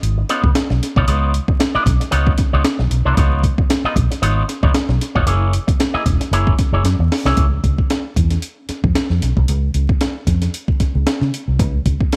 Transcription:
0.03 fingered electric bass G#1, closed hi-hat
0.18 muted clean electric guitar stroke
0.29 clean electric guitar B3 D#4 F4 C#5, snare, closed hi-hat
0.44 fingered electric bass C#2, muted clean electric guitar stroke, kick
0.55 muted clean electric guitar stroke, snare, closed hi-hat
0.70 fingered electric bass B1, muted clean electric guitar stroke, snare
0.83 snare, closed hi-hat
0.96 fingered electric bass C2, clean electric guitar B3 D#4 F4 C#5, kick
1.07 fingered electric bass C#2, clean electric guitar B3 D#4 F4 C#5, closed hi-hat
1.34 closed hi-hat
1.48 muted clean electric guitar stroke, kick
1.60 muted clean electric guitar stroke, snare, closed hi-hat
1.75 clean electric guitar B3 D#4 F4 D#5, muted fingered electric bass stroke
1.86 fingered electric bass B1, muted clean electric guitar stroke, kick, snare, closed hi-hat
2.00 muted clean electric guitar stroke, snare, closed hi-hat
2.11 fingered electric bass C#2, clean electric guitar B3 D#4 F4 C#5, closed hi-hat
2.27 kick
2.38 muted clean electric guitar stroke, kick, snare, closed hi-hat
2.53 fingered electric bass C#2, clean electric guitar B3 D#4 F4 C#5
2.64 muted clean electric guitar stroke, snare, closed hi-hat
2.79 fingered electric bass B1, muted clean electric guitar stroke, snare
2.91 fingered electric bass B1, closed hi-hat
3.05 fingered electric bass C2, clean electric guitar B3 D#4 F4 C#5
3.17 fingered electric bass C#2, clean electric guitar B3 D#4 F4 C#5, kick, closed hi-hat
3.44 kick, closed hi-hat
3.58 muted clean electric guitar stroke, kick
3.69 muted clean electric guitar stroke, snare, closed hi-hat
3.84 clean electric guitar B3 D#4 F4 D#5, muted fingered electric bass stroke
3.96 fingered electric bass B1, muted clean electric guitar stroke, kick, closed hi-hat
4.11 muted clean electric guitar stroke, snare, closed hi-hat
4.22 fingered electric bass G#1, clean electric guitar B3 D#4 F4 C#5, closed hi-hat
4.49 muted clean electric guitar stroke, snare, closed hi-hat
4.63 fingered electric bass C#2, clean electric guitar B3 D#4 F4 C#5, kick
4.74 muted fingered electric bass stroke, snare, closed hi-hat
4.89 fingered electric bass B1, muted clean electric guitar stroke, snare
5.01 snare, closed hi-hat
5.15 fingered electric bass F1, clean electric guitar B3 D#4 F4 C#5, kick
5.26 fingered electric bass F#1, clean electric guitar A#3 E4 G#4 C#5, closed hi-hat
5.53 closed hi-hat
5.67 muted clean electric guitar stroke, kick, closed hi-hat
5.80 muted clean electric guitar stroke, snare, closed hi-hat
5.94 clean electric guitar A#3 E4 G#4 D#5, muted fingered electric bass stroke
6.06 fingered electric bass E1, muted clean electric guitar stroke, kick, snare, closed hi-hat
6.20 muted clean electric guitar stroke, snare, closed hi-hat
6.31 fingered electric bass F#1, clean electric guitar A#3 E4 G#4 C#5, closed hi-hat
6.47 kick
6.59 kick, snare, closed hi-hat
6.72 fingered electric bass F#1, clean electric guitar A#3 E4 G#4 C#5
6.84 fingered electric bass F#2, muted clean electric guitar stroke, snare, closed hi-hat
6.99 fingered electric bass E2, muted clean electric guitar stroke
7.12 snare, open hi-hat
7.25 fingered electric bass C2, clean electric guitar A#3 E4 G#4 C#5, snare
7.37 fingered electric bass C#2, kick, closed hi-hat
7.64 fingered electric bass C#2, kick, closed hi-hat
7.78 kick
7.90 snare, closed hi-hat
8.16 fingered electric bass E2, kick, closed hi-hat
8.30 snare, closed hi-hat
8.42 closed hi-hat
8.69 muted fingered electric bass stroke, snare, closed hi-hat
8.84 fingered electric bass F2, kick
8.95 snare, closed hi-hat
9.10 fingered electric bass F2, snare
9.22 fingered electric bass B1, snare, closed hi-hat
9.37 fingered electric bass C2, kick
9.48 fingered electric bass C#2, closed hi-hat
9.74 fingered electric bass C#2, closed hi-hat
9.89 kick
10.01 snare, closed hi-hat
10.27 fingered electric bass F2, kick, snare, closed hi-hat
10.42 snare, closed hi-hat
10.54 closed hi-hat
10.68 kick
10.80 muted fingered electric bass stroke, kick, snare, closed hi-hat
10.95 fingered electric bass C#2
11.07 snare, closed hi-hat
11.21 fingered electric bass C#3, snare
11.34 closed hi-hat
11.48 fingered electric bass C2
11.59 fingered electric bass C#2, kick, closed hi-hat
11.86 fingered electric bass C#2, kick, closed hi-hat
12.01 kick
12.12 snare, closed hi-hat

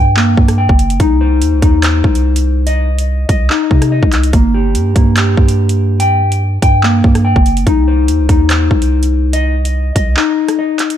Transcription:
Already playing: 808-style bass G2, clean electric guitar G5
0.17 clean electric guitar A#3, clap
0.37 808-style bass G2, kick
0.48 cross-stick, closed hi-hat
0.58 clean electric guitar G5
0.69 808-style bass F#1, kick
0.79 closed hi-hat
0.90 closed hi-hat
1.00 808-style bass C2, clean electric guitar D#4, kick, closed hi-hat
1.21 clean electric guitar C5
1.42 808-style bass D#2, closed hi-hat
1.53 808-style bass C2
1.62 808-style bass D#2, clean electric guitar D#4, kick, closed hi-hat
1.83 clean electric guitar C5, clap, closed hi-hat
2.04 808-style bass C2, kick
2.15 closed hi-hat
2.36 closed hi-hat
2.67 clean electric guitar D#5, closed hi-hat
2.98 closed hi-hat
3.29 808-style bass C2, clean electric guitar D#5, kick, closed hi-hat
3.50 clean electric guitar D#4, clap
3.71 808-style bass C3, kick
3.82 cross-stick, closed hi-hat
3.92 clean electric guitar D#5
4.03 808-style bass C2, kick
4.12 clap, closed hi-hat
4.24 closed hi-hat
4.33 808-style bass G1, clean electric guitar A#3, kick, closed hi-hat
4.54 clean electric guitar G4
4.75 808-style bass G2, closed hi-hat
4.96 808-style bass G2, clean electric guitar A#3, kick, closed hi-hat
5.17 clean electric guitar G4, clap, closed hi-hat
5.37 808-style bass G2, kick
5.48 closed hi-hat
5.69 closed hi-hat
6.00 clean electric guitar G5, closed hi-hat
6.32 closed hi-hat
6.62 808-style bass G2, clean electric guitar G5, kick, closed hi-hat
6.83 clean electric guitar A#3, clap
7.04 808-style bass G2, kick
7.15 cross-stick, closed hi-hat
7.25 clean electric guitar G5
7.36 808-style bass F#1, kick
7.46 closed hi-hat
7.57 closed hi-hat
7.67 808-style bass C2, clean electric guitar D#4, kick, closed hi-hat
7.88 clean electric guitar C5
8.08 808-style bass D#2, closed hi-hat
8.19 808-style bass C2
8.29 808-style bass D#2, clean electric guitar D#4, kick, closed hi-hat
8.50 clean electric guitar C5, clap, closed hi-hat
8.71 808-style bass C2, kick
8.82 closed hi-hat
9.03 closed hi-hat
9.33 clean electric guitar D#5, closed hi-hat
9.65 closed hi-hat
9.95 808-style bass C2, clean electric guitar D#5, kick, closed hi-hat
10.17 clean electric guitar D#4, clap
10.48 cross-stick, closed hi-hat
10.59 clean electric guitar D#5
10.79 clap, closed hi-hat
10.90 closed hi-hat

